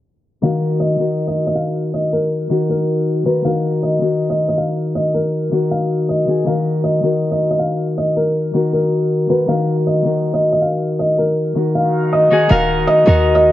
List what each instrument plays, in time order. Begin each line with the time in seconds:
0.42 harp D#3 D#4 F#4 A#4, felt piano F5
0.80 felt piano D#5
0.98 harp D#3 D#4 F#4 A#4
1.27 felt piano D#5
1.47 felt piano D#5
1.55 felt piano F5
1.94 felt piano D#5
2.13 felt piano A#4
2.49 harp D#3 D#4 F#4 A#4
2.70 felt piano A#4
3.25 harp D#3 D#4 F#4 A#4, felt piano B4
3.44 harp D#3 D#4 F#4 A#4, felt piano F5
3.83 felt piano D#5
4.00 harp D#3 D#4 F#4 A#4
4.30 felt piano D#5
4.48 felt piano D#5
4.58 felt piano F5
4.95 felt piano D#5
5.14 felt piano A#4
5.51 harp D#3 D#4 F#4 A#4
5.71 felt piano F5
6.09 felt piano D#5
6.27 harp D#3 D#4 F#4 G#4
6.45 harp D#3 D#4 F#4 A#4, felt piano F5
6.84 felt piano D#5
7.02 harp D#3 D#4 F#4 A#4
7.31 felt piano D#5
7.51 felt piano D#5
7.59 felt piano F5
7.98 felt piano D#5
8.17 felt piano A#4
8.53 harp D#3 D#4 F#4 A#4
8.73 felt piano A#4
9.29 harp D#3 D#4 F#4 A#4, felt piano B4
9.47 harp D#3 D#4 F#4 A#4, felt piano F5
9.87 felt piano D#5
10.04 harp D#3 D#4 F#4 A#4
10.34 felt piano D#5
10.52 felt piano D#5
10.62 felt piano F5
10.99 felt piano D#5
11.18 felt piano A#4
11.55 harp D#3 D#4 F#4 A#4
11.75 felt piano F5
12.13 felt piano D#5
12.30 harp D#3 D#4 F#4 G#4
12.49 808-style bass D#1, harp D#3 D#4 F#4 A#4, felt piano F5
12.87 felt piano D#5
13.06 808-style bass D#2, harp D#3 D#4 F#4 A#4
13.35 felt piano D#5